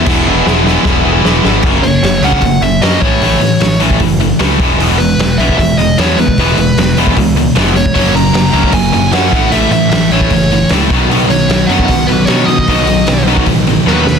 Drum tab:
CC |x---------------|x---------------|----------------|----------------|
HH |----------------|--o-o-o-o-o-o---|o-o-o-o-o-o-o-o-|o-o-o-o-o-o-o-o-|
SD |o---o-o-o---o-o-|----o-------o---|----o-------o---|----o-------o---|
BD |o-------o-------|o------oo-----o-|-------oo-----o-|-------oo------o|

CC |----------------|----------------|----------------|----------------|
HH |o-o-o-o-o-o-o-o-|o-o-o-o-o-o-o-o-|o-o-o-o-o-o-o-o-|o-o-o-o-o-o-o-o-|
SD |----o-------o---|----o-------o---|----o-------o---|----o-------o---|
BD |o------oo------o|o------oo-----o-|-------oo-----o-|-------oo------o|

CC |----------------|
HH |o-o-o-o-o-o-----|
SD |----o-------o-o-|
BD |o------oo-------|